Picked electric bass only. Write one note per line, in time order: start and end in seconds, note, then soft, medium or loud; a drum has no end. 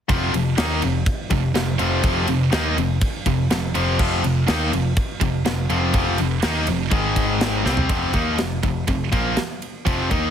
0.10 0.32 F1 medium
0.33 0.56 F1 medium
0.58 0.81 D#2 medium
0.83 1.05 F1 medium
1.31 1.54 F1 medium
1.55 1.78 F1 loud
1.80 2.03 F1 medium
2.04 2.27 F1 loud
2.28 2.51 F1 medium
2.53 2.76 D#2 medium
2.77 3.00 F1 medium
3.26 3.49 F1 medium
3.51 3.73 F1 medium
3.75 3.98 F1 medium
4.00 4.22 F1 loud
4.25 4.47 F1 medium
4.49 4.71 D#2 loud
4.73 4.95 F1 medium
5.21 5.44 F1 medium
5.46 5.68 F1 medium
5.70 5.93 F1 loud
5.95 6.17 F1 loud
6.20 6.42 F1 medium
6.43 6.66 D#2 medium
6.68 6.91 F1 medium
6.92 7.62 G#1 medium
7.65 7.88 C2 medium
7.89 8.13 F1 medium
8.14 8.37 D#2 loud
8.40 8.63 F1 medium
8.64 8.87 F1 medium
8.88 9.11 F1 medium
9.13 9.36 A#1 medium
9.38 muted picked electric bass stroke soft
9.86 10.09 F1 medium
10.11 10.30 D#2 medium